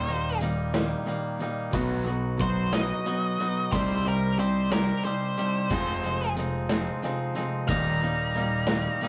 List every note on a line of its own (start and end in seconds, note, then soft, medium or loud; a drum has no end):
0.00 0.93 D#1 medium
0.00 0.38 C5 medium
0.07 0.38 D#2 medium
0.07 0.39 A#2 medium
0.07 0.41 D#3 medium
0.07 0.41 G3 medium
0.07 0.41 A#3 medium
0.07 0.41 D#4 medium
0.07 closed hi-hat medium
0.41 0.71 D#2 medium
0.41 0.71 A#2 medium
0.41 0.74 D#3 medium
0.41 0.74 G3 medium
0.41 0.74 A#3 medium
0.41 0.73 D#4 medium
0.41 closed hi-hat medium
0.73 1.04 D#2 medium
0.73 1.04 A#2 medium
0.73 1.05 D#3 medium
0.73 1.06 G3 medium
0.73 1.06 A#3 medium
0.73 1.07 D#4 medium
0.73 snare loud
0.73 closed hi-hat medium
1.06 1.37 D#2 medium
1.06 1.37 A#2 medium
1.06 1.40 D#3 medium
1.06 1.41 G3 medium
1.06 1.41 A#3 medium
1.06 1.40 D#4 medium
1.06 closed hi-hat medium
1.39 1.70 D#2 medium
1.39 1.70 A#2 medium
1.39 1.73 D#3 medium
1.39 1.74 G3 medium
1.39 1.74 A#3 medium
1.39 1.73 D#4 medium
1.39 closed hi-hat medium
1.72 2.92 B1 loud
1.72 2.04 B2 loud
1.72 2.04 F#3 loud
1.72 2.07 F#3 medium
1.72 2.04 B3 loud
1.72 2.07 B3 medium
1.72 2.07 D#4 loud
1.72 2.06 F#4 medium
1.72 kick loud
1.72 closed hi-hat medium
2.05 2.36 B2 medium
2.05 2.36 F#3 medium
2.05 2.41 F#4 medium
2.05 closed hi-hat medium
2.09 2.40 F#3 medium
2.09 2.40 B3 medium
2.09 2.41 D#4 medium
2.38 2.69 B2 medium
2.38 2.69 F#3 medium
2.38 2.74 F#3 medium
2.38 2.74 B3 medium
2.38 2.73 C5 medium
2.38 kick medium
2.38 closed hi-hat medium
2.42 2.73 D#4 medium
2.42 2.73 F#4 medium
2.72 3.02 B2 medium
2.72 3.03 F#3 medium
2.72 3.05 F#3 medium
2.72 3.05 B3 medium
2.72 3.06 D#4 medium
2.72 3.06 F#4 medium
2.72 3.70 D#5 loud
2.72 snare loud
2.72 closed hi-hat medium
3.06 3.36 B2 medium
3.06 3.39 F#3 medium
3.06 3.36 F#3 medium
3.06 3.40 B3 medium
3.06 3.40 D#4 medium
3.06 3.39 F#4 medium
3.06 closed hi-hat medium
3.38 3.69 B2 medium
3.38 3.69 F#3 medium
3.38 3.74 F#3 medium
3.38 3.73 B3 medium
3.38 3.73 D#4 medium
3.38 3.73 F#4 medium
3.38 closed hi-hat medium
3.72 4.91 C2 loud
3.72 4.04 C3 loud
3.72 4.04 G3 medium
3.72 4.06 G3 medium
3.72 4.04 C4 loud
3.72 4.05 C4 medium
3.72 4.04 D#4 loud
3.72 4.04 G4 medium
3.72 4.05 C5 medium
3.72 kick loud
3.72 closed hi-hat medium
4.05 4.35 C3 medium
4.05 4.35 G3 medium
4.05 4.37 G3 medium
4.05 4.38 C4 medium
4.05 4.38 D#4 medium
4.05 4.39 G4 medium
4.05 4.39 A#4 medium
4.05 closed hi-hat medium
4.38 4.68 C3 medium
4.38 4.72 G3 medium
4.38 4.69 G3 medium
4.38 4.71 C4 medium
4.38 4.71 D#4 medium
4.38 4.71 G4 medium
4.38 4.71 C5 medium
4.38 closed hi-hat medium
4.71 5.01 C3 medium
4.71 5.02 G3 medium
4.71 5.04 G3 medium
4.71 5.04 C4 medium
4.71 5.05 D#4 medium
4.71 5.05 G4 medium
4.71 5.04 A#4 medium
4.71 snare loud
4.71 closed hi-hat loud
5.04 5.35 C3 medium
5.04 5.35 G3 medium
5.04 5.38 G3 medium
5.04 5.38 C4 medium
5.04 5.38 D#4 medium
5.04 5.37 G4 medium
5.04 6.33 C5 medium
5.04 closed hi-hat medium
5.38 5.68 C3 medium
5.38 5.68 G3 medium
5.38 5.70 G3 medium
5.38 5.70 C4 medium
5.38 5.71 D#4 medium
5.38 5.71 G4 medium
5.38 closed hi-hat medium
5.70 6.89 F1 medium
5.70 6.02 F2 medium
5.70 6.02 C3 loud
5.70 6.04 F3 medium
5.70 6.03 F3 medium
5.70 6.04 G#3 loud
5.70 6.03 C4 loud
5.70 6.03 D#4 medium
5.70 kick loud
5.70 closed hi-hat loud
6.03 6.34 F2 medium
6.03 6.34 C3 medium
6.03 6.37 F3 medium
6.03 6.37 G#3 medium
6.03 6.37 C4 medium
6.03 6.37 D#4 medium
6.03 closed hi-hat medium
6.36 6.66 F2 medium
6.36 6.67 C3 medium
6.36 6.71 F3 medium
6.36 6.71 G#3 medium
6.36 6.70 C4 medium
6.36 6.70 D#4 medium
6.36 closed hi-hat medium
6.69 7.00 F2 medium
6.69 7.00 C3 medium
6.69 7.03 F3 medium
6.69 7.03 G#3 medium
6.69 7.03 C4 medium
6.69 7.04 D#4 medium
6.69 snare loud
6.69 closed hi-hat medium
7.03 7.33 F2 medium
7.03 7.33 C3 medium
7.03 7.36 F3 medium
7.03 7.35 G#3 medium
7.03 7.35 C4 medium
7.03 7.35 D#4 medium
7.03 closed hi-hat medium
7.35 7.65 F2 medium
7.35 7.65 C3 medium
7.35 7.69 F3 medium
7.35 7.69 G#3 medium
7.35 7.69 C4 medium
7.35 7.69 D#4 medium
7.35 closed hi-hat medium
7.67 8.87 D#1 loud
7.67 7.99 D#2 medium
7.67 8.00 A#2 medium
7.67 8.00 D#3 loud
7.67 8.03 D#3 medium
7.67 8.02 G3 medium
7.67 8.02 A#3 medium
7.67 8.02 D#4 loud
7.67 9.08 A#5 loud
7.67 kick loud
7.67 closed hi-hat medium
8.02 8.32 D#2 medium
8.02 8.32 A#2 medium
8.02 8.34 D#3 medium
8.02 8.34 G3 medium
8.02 8.35 A#3 medium
8.02 8.36 D#4 medium
8.02 closed hi-hat medium
8.35 8.66 D#2 medium
8.35 8.66 A#2 medium
8.35 8.68 D#3 medium
8.35 8.68 G3 medium
8.35 8.68 A#3 medium
8.35 8.68 D#4 medium
8.35 closed hi-hat medium
8.67 8.97 D#2 medium
8.67 8.98 A#2 medium
8.67 9.01 D#3 medium
8.67 9.02 G3 medium
8.67 9.02 A#3 medium
8.67 9.02 D#4 medium
8.67 snare loud
8.67 closed hi-hat medium
9.01 9.08 D#2 medium
9.01 9.08 A#2 medium
9.01 9.08 D#3 medium
9.01 9.08 G3 medium
9.01 9.08 A#3 medium
9.01 9.08 D#4 medium
9.01 closed hi-hat medium